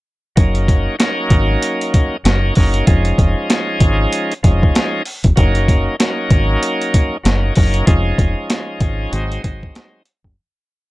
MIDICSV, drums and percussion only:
0, 0, Header, 1, 2, 480
1, 0, Start_track
1, 0, Tempo, 625000
1, 289, Time_signature, 4, 2, 24, 8
1, 8377, End_track
2, 0, Start_track
2, 0, Title_t, "Drums"
2, 285, Note_on_c, 9, 42, 90
2, 287, Note_on_c, 9, 36, 119
2, 362, Note_off_c, 9, 42, 0
2, 364, Note_off_c, 9, 36, 0
2, 421, Note_on_c, 9, 42, 48
2, 498, Note_off_c, 9, 42, 0
2, 525, Note_on_c, 9, 36, 94
2, 528, Note_on_c, 9, 42, 63
2, 602, Note_off_c, 9, 36, 0
2, 605, Note_off_c, 9, 42, 0
2, 765, Note_on_c, 9, 42, 88
2, 769, Note_on_c, 9, 38, 117
2, 842, Note_off_c, 9, 42, 0
2, 846, Note_off_c, 9, 38, 0
2, 1001, Note_on_c, 9, 42, 77
2, 1003, Note_on_c, 9, 36, 86
2, 1078, Note_off_c, 9, 42, 0
2, 1080, Note_off_c, 9, 36, 0
2, 1248, Note_on_c, 9, 42, 95
2, 1325, Note_off_c, 9, 42, 0
2, 1393, Note_on_c, 9, 42, 59
2, 1470, Note_off_c, 9, 42, 0
2, 1489, Note_on_c, 9, 42, 80
2, 1491, Note_on_c, 9, 36, 88
2, 1566, Note_off_c, 9, 42, 0
2, 1568, Note_off_c, 9, 36, 0
2, 1730, Note_on_c, 9, 42, 80
2, 1736, Note_on_c, 9, 38, 109
2, 1807, Note_off_c, 9, 42, 0
2, 1813, Note_off_c, 9, 38, 0
2, 1961, Note_on_c, 9, 46, 54
2, 1974, Note_on_c, 9, 36, 92
2, 2038, Note_off_c, 9, 46, 0
2, 2051, Note_off_c, 9, 36, 0
2, 2103, Note_on_c, 9, 42, 55
2, 2180, Note_off_c, 9, 42, 0
2, 2205, Note_on_c, 9, 42, 87
2, 2207, Note_on_c, 9, 36, 120
2, 2282, Note_off_c, 9, 42, 0
2, 2284, Note_off_c, 9, 36, 0
2, 2341, Note_on_c, 9, 42, 47
2, 2418, Note_off_c, 9, 42, 0
2, 2445, Note_on_c, 9, 36, 92
2, 2448, Note_on_c, 9, 42, 66
2, 2522, Note_off_c, 9, 36, 0
2, 2525, Note_off_c, 9, 42, 0
2, 2686, Note_on_c, 9, 42, 90
2, 2690, Note_on_c, 9, 38, 111
2, 2763, Note_off_c, 9, 42, 0
2, 2767, Note_off_c, 9, 38, 0
2, 2922, Note_on_c, 9, 42, 81
2, 2923, Note_on_c, 9, 36, 90
2, 2999, Note_off_c, 9, 42, 0
2, 3000, Note_off_c, 9, 36, 0
2, 3168, Note_on_c, 9, 42, 95
2, 3245, Note_off_c, 9, 42, 0
2, 3314, Note_on_c, 9, 42, 57
2, 3391, Note_off_c, 9, 42, 0
2, 3410, Note_on_c, 9, 42, 82
2, 3412, Note_on_c, 9, 36, 84
2, 3487, Note_off_c, 9, 42, 0
2, 3489, Note_off_c, 9, 36, 0
2, 3557, Note_on_c, 9, 36, 88
2, 3634, Note_off_c, 9, 36, 0
2, 3651, Note_on_c, 9, 42, 82
2, 3657, Note_on_c, 9, 38, 108
2, 3727, Note_off_c, 9, 42, 0
2, 3734, Note_off_c, 9, 38, 0
2, 3882, Note_on_c, 9, 46, 56
2, 3959, Note_off_c, 9, 46, 0
2, 4023, Note_on_c, 9, 42, 55
2, 4028, Note_on_c, 9, 36, 85
2, 4100, Note_off_c, 9, 42, 0
2, 4104, Note_off_c, 9, 36, 0
2, 4125, Note_on_c, 9, 42, 89
2, 4128, Note_on_c, 9, 36, 113
2, 4202, Note_off_c, 9, 42, 0
2, 4204, Note_off_c, 9, 36, 0
2, 4262, Note_on_c, 9, 42, 48
2, 4339, Note_off_c, 9, 42, 0
2, 4366, Note_on_c, 9, 36, 93
2, 4369, Note_on_c, 9, 42, 64
2, 4442, Note_off_c, 9, 36, 0
2, 4446, Note_off_c, 9, 42, 0
2, 4607, Note_on_c, 9, 42, 89
2, 4611, Note_on_c, 9, 38, 118
2, 4684, Note_off_c, 9, 42, 0
2, 4687, Note_off_c, 9, 38, 0
2, 4842, Note_on_c, 9, 42, 80
2, 4843, Note_on_c, 9, 36, 88
2, 4919, Note_off_c, 9, 42, 0
2, 4920, Note_off_c, 9, 36, 0
2, 5089, Note_on_c, 9, 42, 94
2, 5166, Note_off_c, 9, 42, 0
2, 5234, Note_on_c, 9, 42, 57
2, 5311, Note_off_c, 9, 42, 0
2, 5330, Note_on_c, 9, 42, 84
2, 5332, Note_on_c, 9, 36, 89
2, 5407, Note_off_c, 9, 42, 0
2, 5409, Note_off_c, 9, 36, 0
2, 5570, Note_on_c, 9, 42, 81
2, 5576, Note_on_c, 9, 38, 110
2, 5647, Note_off_c, 9, 42, 0
2, 5653, Note_off_c, 9, 38, 0
2, 5802, Note_on_c, 9, 46, 55
2, 5814, Note_on_c, 9, 36, 91
2, 5879, Note_off_c, 9, 46, 0
2, 5891, Note_off_c, 9, 36, 0
2, 5943, Note_on_c, 9, 42, 57
2, 6020, Note_off_c, 9, 42, 0
2, 6046, Note_on_c, 9, 42, 84
2, 6047, Note_on_c, 9, 36, 122
2, 6122, Note_off_c, 9, 42, 0
2, 6124, Note_off_c, 9, 36, 0
2, 6285, Note_on_c, 9, 36, 90
2, 6289, Note_on_c, 9, 42, 67
2, 6362, Note_off_c, 9, 36, 0
2, 6366, Note_off_c, 9, 42, 0
2, 6526, Note_on_c, 9, 42, 93
2, 6530, Note_on_c, 9, 38, 116
2, 6603, Note_off_c, 9, 42, 0
2, 6607, Note_off_c, 9, 38, 0
2, 6762, Note_on_c, 9, 42, 78
2, 6763, Note_on_c, 9, 36, 94
2, 6839, Note_off_c, 9, 42, 0
2, 6840, Note_off_c, 9, 36, 0
2, 7010, Note_on_c, 9, 42, 93
2, 7087, Note_off_c, 9, 42, 0
2, 7155, Note_on_c, 9, 42, 58
2, 7232, Note_off_c, 9, 42, 0
2, 7251, Note_on_c, 9, 42, 79
2, 7252, Note_on_c, 9, 36, 86
2, 7328, Note_off_c, 9, 42, 0
2, 7329, Note_off_c, 9, 36, 0
2, 7397, Note_on_c, 9, 36, 86
2, 7474, Note_off_c, 9, 36, 0
2, 7491, Note_on_c, 9, 42, 83
2, 7497, Note_on_c, 9, 38, 109
2, 7568, Note_off_c, 9, 42, 0
2, 7574, Note_off_c, 9, 38, 0
2, 7722, Note_on_c, 9, 42, 78
2, 7799, Note_off_c, 9, 42, 0
2, 7867, Note_on_c, 9, 36, 83
2, 7944, Note_off_c, 9, 36, 0
2, 8377, End_track
0, 0, End_of_file